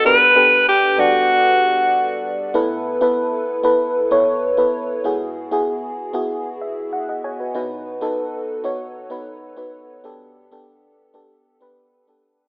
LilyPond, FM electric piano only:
<<
  \new Staff \with { instrumentName = "FM electric piano" } { \time 4/4 \key a \lydian \tempo 4 = 96 << { r1 | r1 | r2 r8 e''8 fis''16 <gis' dis'' fis''>16 <gis' cis'' gis''>16 <fis' b'>16~ | <fis' b'>16 r2. r8. |
r1 | } \\ { <b d' g' a' b'>16 r16 <b d' g' a' b'>8. r16 <g b d' a' d''>4. r4 | <b e' a' b'>8 r16 <b e' a' b'>8. r16 <b e' a' b'>8 r16 <b e' a' cis''>8 r16 <b e' a' b'>8 r16 | <b e' fis' gis'>8 r16 <b e' fis' gis'>8. r16 <b e' fis' gis'>8 r4. r16 | <b dis' fis' b'>8 r16 <b dis' fis' a'>8. r16 <b dis' fis' cis''>8 r16 <b dis' fis' b'>8 r16 <b dis' fis' b'>8 r16 |
<b d' g' a'>8 r16 <b d' g' a'>8. r16 <b d' g' a'>8 r16 <b d' g' b'>8 r16 <b d' g' a'>8 r16 | } >> }
  \new Staff \with { instrumentName = "FM electric piano" } { \clef bass \time 4/4 \key a \lydian g,1 | <a,, a,>1 | gis,1 | <b,, b,>1 |
g,1 | }
>>